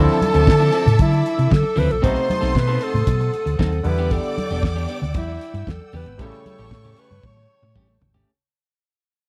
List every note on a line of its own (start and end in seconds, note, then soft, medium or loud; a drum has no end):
0.00 1.99 D3 medium
0.00 0.19 F3 medium
0.00 1.99 F3 medium
0.00 0.20 C4 medium
0.00 2.00 C4 medium
0.00 0.20 E4 loud
0.00 2.00 E4 medium
0.00 1.01 A4 loud
0.00 1.73 A4 loud
0.00 3.81 A4 medium
0.00 2.01 E5 medium
0.00 1.73 A5 loud
0.00 2.01 D6 medium
0.00 2.01 E6 medium
0.08 snare soft
0.08 closed hi-hat soft
0.22 closed hi-hat medium
0.22 high conga medium
0.34 0.45 D2 loud
0.34 0.46 F3 medium
0.34 0.47 C4 medium
0.34 0.47 E4 medium
0.34 closed hi-hat soft
0.47 0.69 D3 loud
0.47 muted clean electric guitar stroke soft
0.47 kick loud
0.47 snare loud
0.60 0.72 F3 medium
0.60 0.72 C4 medium
0.60 0.73 E4 medium
0.60 closed hi-hat soft
0.72 0.88 F3 medium
0.72 0.86 C4 medium
0.72 0.85 E4 medium
0.72 closed hi-hat medium
0.86 0.97 A2 medium
0.86 muted clean electric guitar stroke medium
0.86 closed hi-hat soft
0.86 low conga medium
0.99 1.21 D3 loud
0.99 1.55 E4 loud
0.99 muted clean electric guitar stroke soft
0.99 kick loud
0.99 closed hi-hat medium
0.99 muted conga soft
0.99 high conga medium
1.11 muted clean electric guitar stroke medium
1.11 closed hi-hat soft
1.26 closed hi-hat medium
1.38 1.49 C3 medium
1.38 muted clean electric guitar stroke soft
1.38 closed hi-hat medium
1.51 1.62 D3 loud
1.51 1.80 A4 loud
1.51 muted clean electric guitar stroke soft
1.51 kick loud
1.51 snare loud
1.51 high conga medium
1.63 muted clean electric guitar stroke medium
1.76 1.88 D2 loud
1.76 1.96 F3 medium
1.76 1.90 C4 medium
1.76 1.89 E4 loud
1.76 1.93 B4 loud
1.76 open hi-hat medium
1.76 low conga medium
1.90 2.01 A#1 medium
1.90 2.03 A4 medium
1.90 muted clean electric guitar stroke medium
1.90 closed hi-hat soft
2.02 2.14 B1 loud
2.02 3.81 C3 medium
2.02 3.82 A3 medium
2.02 3.82 B3 medium
2.02 2.26 C4 medium
2.02 2.27 D#4 medium
2.02 3.83 D#4 medium
2.02 2.27 A4 medium
2.02 3.56 C5 loud
2.02 2.58 C5 loud
2.02 6.15 F#5 medium
2.02 3.83 A5 medium
2.02 3.56 C6 loud
2.02 3.83 D#6 medium
2.02 kick loud
2.02 closed hi-hat medium
2.02 muted conga soft
2.16 closed hi-hat soft
2.28 muted clean electric guitar stroke soft
2.28 closed hi-hat medium
2.28 muted conga soft
2.28 high conga medium
2.41 2.53 B1 medium
2.41 2.53 C4 soft
2.41 2.54 D#4 medium
2.41 2.54 A4 medium
2.41 closed hi-hat soft
2.54 2.77 B2 loud
2.54 2.85 B4 medium
2.54 muted clean electric guitar stroke soft
2.54 kick loud
2.54 snare loud
2.68 2.80 C4 medium
2.68 2.80 D#4 medium
2.68 2.81 A4 medium
2.81 2.96 C4 medium
2.81 2.94 D#4 medium
2.81 2.93 A4 medium
2.81 3.59 A4 loud
2.81 closed hi-hat medium
2.94 3.05 A2 medium
2.94 muted clean electric guitar stroke soft
2.94 closed hi-hat soft
2.94 low conga medium
3.07 3.29 B2 medium
3.07 muted clean electric guitar stroke soft
3.07 kick loud
3.07 closed hi-hat loud
3.07 muted conga soft
3.07 high conga medium
3.20 muted clean electric guitar stroke soft
3.20 closed hi-hat soft
3.34 closed hi-hat medium
3.34 muted conga soft
3.46 3.57 D2 medium
3.46 muted clean electric guitar stroke soft
3.46 closed hi-hat soft
3.59 3.81 D#2 medium
3.59 3.78 C4 medium
3.59 3.73 D#4 medium
3.59 3.88 A4 medium
3.59 3.72 A4 medium
3.59 kick loud
3.59 snare loud
3.59 muted conga soft
3.59 high conga medium
3.72 muted clean electric guitar stroke soft
3.72 closed hi-hat soft
3.84 4.17 E2 loud
3.84 5.88 D3 medium
3.84 5.89 G3 medium
3.84 5.89 B3 medium
3.84 5.90 E4 medium
3.84 4.13 B4 loud
3.84 6.16 D5 medium
3.84 5.89 D5 loud
3.84 8.23 G5 medium
3.84 5.89 D6 loud
3.84 8.23 E6 medium
3.84 muted clean electric guitar stroke medium
3.84 open hi-hat medium
3.84 muted conga soft
3.84 low conga medium
3.98 4.10 B3 medium
3.98 4.11 D4 medium
3.98 4.12 G4 medium
3.98 closed hi-hat soft
4.11 4.35 B3 medium
4.11 4.35 D4 loud
4.11 4.36 G4 loud
4.11 4.88 A4 medium
4.11 kick loud
4.11 closed hi-hat medium
4.11 muted conga soft
4.24 closed hi-hat soft
4.38 muted clean electric guitar stroke soft
4.38 closed hi-hat medium
4.38 muted conga soft
4.38 high conga medium
4.50 4.61 E1 loud
4.50 4.62 B3 soft
4.50 4.63 D4 soft
4.50 4.63 G4 medium
4.50 closed hi-hat soft
4.63 4.85 E2 loud
4.63 kick loud
4.63 snare loud
4.63 muted conga soft
4.76 4.88 B3 medium
4.76 4.88 D4 medium
4.76 4.89 G4 medium
4.89 5.04 B3 medium
4.89 5.02 D4 medium
4.89 5.01 G4 medium
4.89 closed hi-hat medium
5.02 5.15 D2 medium
5.02 muted clean electric guitar stroke medium
5.02 closed hi-hat soft
5.02 low conga medium
5.14 5.37 E2 loud
5.14 5.72 E4 medium
5.14 muted clean electric guitar stroke soft
5.14 kick loud
5.14 closed hi-hat medium
5.14 high conga medium
5.28 muted clean electric guitar stroke soft
5.41 closed hi-hat medium
5.54 5.65 G2 loud
5.54 muted clean electric guitar stroke soft
5.54 closed hi-hat medium
5.67 5.78 E2 loud
5.67 5.95 A4 medium
5.67 muted clean electric guitar stroke soft
5.67 kick loud
5.67 snare loud
5.67 muted conga soft
5.67 high conga medium
5.81 muted clean electric guitar stroke soft
5.92 6.04 E2 loud
5.92 6.13 B3 medium
5.92 6.07 D4 medium
5.92 6.06 G4 loud
5.92 6.23 B4 medium
5.92 open hi-hat medium
5.92 low conga medium
6.06 6.17 G#1 loud
6.06 muted clean electric guitar stroke soft
6.06 closed hi-hat soft
6.18 6.30 A1 loud
6.18 6.25 C3 medium
6.18 8.23 G3 medium
6.18 8.24 A3 medium
6.18 6.44 A3 medium
6.18 6.44 C#4 loud
6.18 8.24 E4 medium
6.18 6.44 G4 medium
6.18 6.72 A4 medium
6.18 8.26 C#5 medium
6.18 7.98 C#5 loud
6.18 8.26 A5 medium
6.18 7.98 C#6 loud
6.18 kick loud
6.18 closed hi-hat medium
6.18 muted conga soft
6.24 8.26 C#3 medium
6.32 snare soft
6.32 closed hi-hat soft
6.46 muted clean electric guitar stroke soft
6.46 closed hi-hat medium
6.46 high conga medium
6.58 6.69 A1 loud
6.58 6.71 A3 medium
6.58 6.71 C#4 medium
6.58 6.72 G4 medium
6.58 closed hi-hat soft
6.71 6.93 A2 loud
6.71 7.01 A4 medium
6.71 kick loud
6.71 snare loud
6.84 6.96 A3 medium
6.84 6.97 C#4 medium
6.84 6.98 G4 medium
6.84 closed hi-hat soft
6.84 low conga medium
6.97 7.13 A3 medium
6.97 7.11 C#4 medium
6.97 7.10 G4 medium
6.97 7.27 B4 medium
6.97 closed hi-hat medium
7.11 7.21 G2 medium
7.11 muted clean electric guitar stroke soft
7.11 closed hi-hat soft
7.11 low conga medium
7.23 7.45 A2 loud
7.23 8.03 C#5 loud
7.23 muted clean electric guitar stroke soft
7.23 kick loud
7.23 high tom medium
7.23 muted conga soft
7.23 high conga medium
7.37 muted clean electric guitar stroke soft
7.37 high tom medium
7.62 7.77 A2 medium
7.62 muted clean electric guitar stroke soft
7.62 mid tom medium
7.76 7.97 A1 medium
7.76 7.95 A3 medium
7.76 7.89 C#4 loud
7.76 7.88 G4 loud
7.76 kick loud
7.76 mid tom medium
7.76 high conga medium
7.89 muted clean electric guitar stroke soft
8.01 8.23 G#1 medium
8.01 muted clean electric guitar stroke soft
8.01 floor tom medium
8.01 muted conga soft
8.01 low conga medium
8.14 8.30 A3 medium
8.14 8.30 C#4 medium
8.14 8.30 G4 medium
8.14 floor tom medium